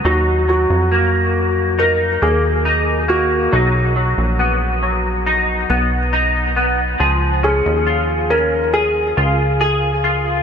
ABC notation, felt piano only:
X:1
M:4/4
L:1/8
Q:1/4=69
K:Ebm
V:1 name="Felt piano"
G G3 B A2 G- | G4- G z3 | z A2 B A2 A2 |]